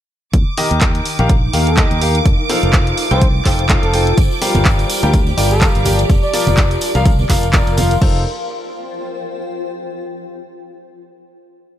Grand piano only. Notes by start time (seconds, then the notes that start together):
0.58 D#3 G4 A#4 D#5
1.19 D#3 G4 A#4 F5
1.53 D#3 G4 A#4 F5
1.78 D#3 G4 A#4 D#5
2.02 G4 A#4 F5
2.50 F3 D#4 F4 A4 C5 F5
3.11 F3 D#4 F4 A4 C5 G5
3.46 F3 D#4 F4 A4 C5 G5
3.70 F3 D#4 F4 A4 C5 F5
3.94 D#4 F4 A4 C5 G5
4.42 G3 D4 F4 G4 A#4 F5
5.03 G3 D4 F4 G4 A#4 G5
5.37 G3 D4 F4 G4 A#4 G5
5.61 G3 D4 F4 G4 A#4 F5
5.85 F3 D4 F4 G4 A#4 G5
6.34 F3 F4 A#4 D5
6.95 F3 F4 A#4 F5
7.30 F3 F4 A#4 F5
7.53 F3 F4 A#4 D5
7.78 F3 F4 A#4 F5
8.02 D#4 F4 A4 C5 F5